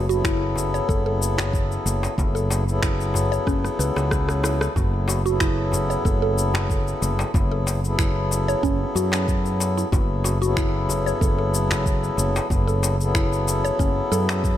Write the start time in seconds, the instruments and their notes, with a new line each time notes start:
Already playing: fretless electric bass F#1
0.07 harmonium C#3 F#3 B3 E4 A4, synth pluck F#4, cabasa
0.24 synth pluck E4, finger snap, kick, cabasa
0.56 darbuka ka, darbuka dum, cabasa
0.74 synth pluck C#5, cabasa
0.89 fretless electric bass F#1, synth pluck A4, kick, cabasa
1.06 synth pluck A4
1.22 cabasa
1.38 finger snap, darbuka tek, darbuka dum, cabasa
1.53 kick, cabasa
1.72 cabasa
1.86 fretless electric bass F#1, darbuka ka, cabasa
2.03 darbuka tek, cabasa
2.17 fretless electric bass F#1, harmonium C#3 F#3 B3 E4 A4, kick, darbuka dum, cabasa
2.35 synth pluck A4, cabasa
2.50 darbuka tek, cabasa
2.66 harmonium C#3 F#3 B3 E4 A4, cabasa
2.82 synth pluck E4, finger snap, kick, cabasa
3.01 cabasa
3.14 darbuka ka, darbuka dum, cabasa
3.32 synth pluck C#5, cabasa
3.47 fretless electric bass F#1, synth pluck C#4, kick, cross-stick, cabasa
3.64 cross-stick, cabasa
3.79 fretless electric bass C#2, synth pluck B4, darbuka ka, cabasa
3.96 fretless electric bass C#2, cross-stick, darbuka tek, cabasa
4.11 kick, cross-stick, cabasa
4.29 cross-stick, cabasa
4.43 synth pluck E4, cross-stick, darbuka tek, cabasa
4.61 synth pluck A4, cross-stick, cabasa
4.75 fretless electric bass F#1, harmonium C#3 F#3 B3 E4 A4, synth pluck F#4, kick, darbuka dum, cabasa
5.08 synth pluck F#4, darbuka tek, cabasa
5.24 harmonium C#3 F#3 B3 E4 A4, synth pluck F#4, cabasa
5.40 synth pluck E4, finger snap, kick, cabasa
5.72 darbuka ka, darbuka dum, cabasa
5.90 synth pluck C#5, cabasa
6.05 fretless electric bass F#1, synth pluck A4, kick, cabasa
6.22 synth pluck A4
6.38 cabasa
6.54 finger snap, darbuka tek, darbuka dum, cabasa
6.70 kick, cabasa
6.88 cabasa
7.02 fretless electric bass F#1, darbuka ka, cabasa
7.19 darbuka tek, cabasa
7.33 fretless electric bass F#1, harmonium C#3 F#3 B3 E4 A4, kick, darbuka dum, cabasa
7.51 synth pluck A4
7.67 darbuka tek, cabasa
7.82 harmonium C#3 F#3 B3 E4, cabasa
7.86 harmonium A4
7.99 synth pluck E4, finger snap, kick, cabasa
8.31 darbuka ka, cabasa
8.48 synth pluck C#5, cabasa
8.63 fretless electric bass F#1, synth pluck C#4, kick, cabasa
8.95 fretless electric bass F#2, synth pluck F#4, darbuka ka, cabasa
9.12 finger snap, darbuka tek, cabasa
9.28 kick, cabasa
9.46 cabasa
9.60 darbuka tek, cabasa
9.77 synth pluck E4, cabasa
9.92 fretless electric bass F#1, harmonium C#3 F#3 B3 E4 A4, synth pluck F#4, kick, darbuka dum, cabasa
10.24 synth pluck F#4, darbuka tek, cabasa
10.40 harmonium C#3 F#3 B3 E4 A4, synth pluck F#4, cabasa
10.57 synth pluck E4, finger snap, kick, cabasa
10.89 darbuka ka, darbuka dum, cabasa
11.06 synth pluck C#5, cabasa
11.21 fretless electric bass F#1, synth pluck A4, kick, cabasa
11.38 synth pluck A4
11.54 cabasa
11.71 finger snap, darbuka tek, darbuka dum, cabasa
11.86 kick, cabasa
12.04 cabasa
12.17 fretless electric bass F#1, darbuka ka, cabasa
12.36 darbuka tek, cabasa
12.50 fretless electric bass F#1, harmonium C#3 F#3 B3 E4 A4, kick, darbuka dum, cabasa
12.67 synth pluck A4, cabasa
12.83 darbuka tek, cabasa
12.97 harmonium C#3 F#3 B3 E4, cabasa
13.02 harmonium A4
13.15 synth pluck E4, finger snap, kick, cabasa
13.33 cabasa
13.48 darbuka ka, cabasa
13.65 synth pluck C#5, cabasa
13.79 fretless electric bass F#1, synth pluck C#4, kick, cabasa
14.12 fretless electric bass F#2, synth pluck A4, darbuka ka, cabasa
14.29 finger snap, darbuka tek, cabasa
14.44 kick, cabasa